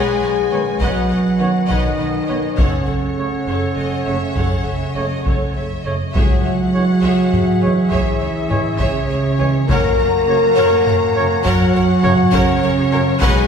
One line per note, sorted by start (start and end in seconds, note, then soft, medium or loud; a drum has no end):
0.00 0.79 G#3 medium
0.00 2.55 C#4 medium
0.00 0.77 G#4 loud
0.00 0.21 B4 medium
0.00 2.59 B4 medium
0.00 0.22 C#5 medium
0.00 0.21 D#5 medium
0.00 2.59 D#5 medium
0.00 0.21 F#5 medium
0.00 2.55 F#5 medium
0.00 0.81 G#5 medium
0.21 0.29 B1 medium
0.21 0.32 B4 medium
0.21 0.32 C#5 medium
0.21 0.30 D#5 soft
0.21 0.30 F#5 soft
0.50 0.59 B1 soft
0.50 0.62 D#3 medium
0.50 0.62 B3 medium
0.50 0.60 B4 soft
0.50 0.59 C#5 soft
0.50 0.62 C#5 medium
0.50 0.61 C#5 soft
0.50 0.58 D#5 soft
0.80 0.88 B1 medium
0.80 1.71 F#3 medium
0.80 1.70 F#4 medium
0.80 1.08 B4 medium
0.80 1.08 C#5 medium
0.80 1.08 D#5 medium
0.80 1.08 F#5 medium
0.80 1.68 F#5 medium
0.80 taiko medium
1.10 1.18 B1 soft
1.10 1.18 B4 soft
1.10 1.18 C#5 medium
1.10 1.18 D#5 medium
1.10 1.18 F#5 soft
1.38 1.47 B1 soft
1.38 1.50 D#3 medium
1.38 1.50 B3 medium
1.38 1.47 B4 soft
1.38 1.46 C#5 medium
1.38 1.47 C#5 soft
1.38 1.50 C#5 medium
1.38 1.47 D#5 soft
1.68 1.77 B1 medium
1.68 2.60 D#3 medium
1.68 2.57 D#4 medium
1.68 1.97 B4 medium
1.68 1.97 C#5 medium
1.68 1.96 D#5 medium
1.68 2.57 D#5 medium
1.68 1.96 F#5 medium
1.68 taiko medium
1.98 2.07 B1 soft
1.98 2.06 B4 soft
1.98 2.06 C#5 soft
1.98 2.07 D#5 soft
1.98 2.06 F#5 soft
2.27 2.36 B1 soft
2.27 2.38 D#3 medium
2.27 2.39 B3 medium
2.27 2.36 B4 soft
2.27 2.35 C#5 medium
2.27 2.36 C#5 medium
2.27 2.39 C#5 soft
2.27 2.35 D#5 medium
2.57 2.66 F#1 medium
2.57 5.81 C#3 medium
2.57 5.84 C#4 medium
2.57 5.81 C#4 medium
2.57 2.86 A4 medium
2.57 5.85 A4 medium
2.57 2.85 C#5 medium
2.57 2.86 C#5 medium
2.57 5.85 C#5 medium
2.57 5.86 C#5 medium
2.57 2.84 F#5 medium
2.57 5.82 F#5 medium
2.57 taiko medium
2.85 2.95 F#1 soft
2.85 2.96 A4 soft
2.85 2.94 C#5 soft
2.85 2.96 C#5 soft
2.85 2.93 F#5 soft
3.16 3.27 C#3 medium
3.16 3.28 A3 soft
3.16 3.29 C#5 soft
3.46 3.55 F#1 medium
3.46 3.75 A4 medium
3.46 3.74 C#5 medium
3.46 3.75 C#5 medium
3.76 3.85 F#1 soft
3.76 3.85 A4 soft
3.76 3.85 C#5 soft
3.76 4.06 D#5 medium
4.05 4.15 F#1 soft
4.05 4.17 C#3 medium
4.05 4.17 A3 medium
4.05 4.14 A4 soft
4.05 4.14 C#5 soft
4.05 4.17 C#5 soft
4.05 4.35 E5 medium
4.35 4.45 F#1 medium
4.35 4.64 A4 medium
4.35 4.64 C#5 medium
4.35 4.65 F#5 medium
4.35 taiko medium
4.65 4.74 F#1 soft
4.65 4.74 A4 soft
4.65 4.74 C#5 soft
4.65 4.95 E5 medium
4.95 5.04 F#1 soft
4.95 5.06 C#3 medium
4.95 5.06 A3 medium
4.95 5.03 A4 soft
4.95 5.06 C#5 medium
4.95 5.03 C#5 soft
4.95 5.25 D#5 medium
5.24 5.33 F#1 medium
5.24 5.53 A4 medium
5.24 5.55 C#5 medium
5.24 5.53 C#5 medium
5.24 taiko medium
5.54 5.63 F#1 soft
5.54 5.63 A4 soft
5.54 5.64 C#5 soft
5.54 5.85 E5 medium
5.83 5.93 F#1 soft
5.83 5.95 C#3 medium
5.83 5.96 A3 medium
5.83 5.93 A4 soft
5.83 5.93 C#5 soft
5.83 5.95 C#5 medium
5.83 6.14 D#5 medium
6.13 6.23 C#2 medium
6.13 7.00 C#3 medium
6.13 7.88 F#3 medium
6.13 9.66 C#4 medium
6.13 7.87 F#4 medium
6.13 9.69 G#4 medium
6.13 6.43 G#4 medium
6.13 6.41 C#5 medium
6.13 9.65 C#5 medium
6.13 6.42 C#5 medium
6.13 6.41 E5 medium
6.13 9.69 E5 medium
6.13 7.88 F#5 medium
6.13 taiko medium
6.44 6.52 C#2 soft
6.44 6.52 G#4 soft
6.44 6.52 C#5 soft
6.44 6.53 C#5 soft
6.44 6.52 E5 soft
6.74 6.84 E3 medium
6.74 6.84 G#3 medium
6.74 6.84 C#5 medium
7.02 7.11 C#2 medium
7.02 7.30 G#4 medium
7.02 7.30 C#5 medium
7.02 7.31 C#5 medium
7.02 7.30 E5 medium
7.33 7.41 C#2 medium
7.33 7.41 G#4 soft
7.33 7.41 C#5 soft
7.33 7.41 E5 soft
7.33 taiko low-mid soft
7.61 7.70 C#2 soft
7.61 7.73 E3 medium
7.61 7.73 G#3 medium
7.61 7.70 G#4 soft
7.61 7.69 C#5 soft
7.61 7.70 C#5 soft
7.61 7.73 C#5 medium
7.90 8.00 C#2 medium
7.90 8.80 E3 medium
7.90 8.80 E4 medium
7.90 8.18 G#4 medium
7.90 8.18 C#5 medium
7.90 8.19 E5 medium
7.90 8.80 E5 medium
7.90 taiko medium
8.20 8.29 C#2 soft
8.20 8.29 G#4 soft
8.20 8.28 C#5 soft
8.20 8.28 E5 soft
8.49 8.58 C#2 soft
8.49 8.60 E3 medium
8.49 8.60 G#3 medium
8.49 8.57 G#4 medium
8.49 8.58 G#4 soft
8.49 8.57 C#5 soft
8.49 8.58 C#5 medium
8.49 8.61 C#5 medium
8.49 taiko low-mid medium
8.79 8.87 C#2 medium
8.79 9.69 C#3 medium
8.79 9.69 C#4 medium
8.79 9.07 G#4 medium
8.79 9.07 C#5 medium
8.79 9.70 C#5 medium
8.79 9.07 E5 medium
8.79 taiko medium
9.08 9.17 C#2 soft
9.08 9.16 G#4 medium
9.08 9.16 C#5 medium
9.08 9.18 C#5 medium
9.08 9.18 E5 medium
9.38 9.47 C#2 medium
9.38 9.49 E3 medium
9.38 9.49 G#3 medium
9.38 9.47 G#4 medium
9.38 9.50 C#5 medium
9.38 9.47 C#5 medium
9.38 9.48 C#5 medium
9.66 9.77 F#2 medium
9.66 11.42 A#3 medium
9.66 13.05 C#4 medium
9.66 13.05 F#4 medium
9.66 11.41 A#4 loud
9.66 9.97 A#4 medium
9.66 13.05 C#5 medium
9.66 9.97 C#5 medium
9.66 13.05 F#5 medium
9.66 9.97 F#5 medium
9.66 11.42 A#5 medium
9.66 taiko loud
9.98 10.07 F#2 medium
9.98 10.07 A#4 soft
9.98 10.06 C#5 soft
9.98 10.07 C#5 soft
9.98 10.06 F#5 medium
10.27 10.38 C#3 medium
10.27 10.38 F#3 medium
10.27 10.38 C#5 medium
10.56 10.65 F#2 medium
10.56 10.85 A#4 medium
10.56 10.84 C#5 medium
10.56 10.85 C#5 medium
10.56 10.84 F#5 medium
10.86 10.94 F#2 medium
10.86 10.95 A#4 medium
10.86 10.95 C#5 medium
10.86 10.95 F#5 medium
10.86 taiko low-mid medium
11.15 11.23 F#2 medium
11.15 11.27 C#3 medium
11.15 11.26 F#3 medium
11.15 11.24 A#4 medium
11.15 11.26 C#5 medium
11.15 11.24 C#5 medium
11.44 11.52 F#2 medium
11.44 12.34 F#3 medium
11.44 12.33 F#4 loud
11.44 11.73 A#4 medium
11.44 11.73 C#5 medium
11.44 11.72 F#5 medium
11.44 12.34 F#5 medium
11.44 taiko medium
11.74 11.82 F#2 medium
11.74 11.83 A#4 medium
11.74 11.82 C#5 medium
11.74 11.83 F#5 medium
12.02 12.12 F#2 medium
12.02 12.14 C#3 medium
12.02 12.14 F#3 medium
12.02 12.10 A#4 medium
12.02 12.11 A#4 medium
12.02 12.11 C#5 medium
12.02 12.14 C#5 medium
12.02 taiko low-mid medium
12.32 12.40 F#2 medium
12.32 13.21 C#3 loud
12.32 13.04 C#4 loud
12.32 12.61 A#4 medium
12.32 12.60 C#5 medium
12.32 12.61 C#5 medium
12.32 13.22 C#5 loud
12.32 12.60 F#5 medium
12.32 taiko medium
12.62 12.70 F#2 medium
12.62 12.71 A#4 medium
12.62 12.70 C#5 medium
12.62 12.71 C#5 medium
12.62 12.70 F#5 medium
12.92 13.00 F#2 medium
12.92 13.03 C#3 medium
12.92 13.03 F#3 medium
12.92 13.00 A#4 medium
12.92 13.00 C#5 medium
12.92 13.03 C#5 medium
12.92 13.00 C#5 medium
13.21 13.29 B1 loud
13.21 13.47 G#3 loud
13.21 13.47 D#4 loud
13.21 13.47 F#4 loud
13.21 13.47 G#4 loud
13.21 13.47 B4 medium
13.21 13.47 C#5 medium
13.21 13.47 C#5 loud
13.21 13.47 D#5 medium
13.21 13.47 F#5 loud
13.21 13.47 G#5 loud
13.21 taiko loud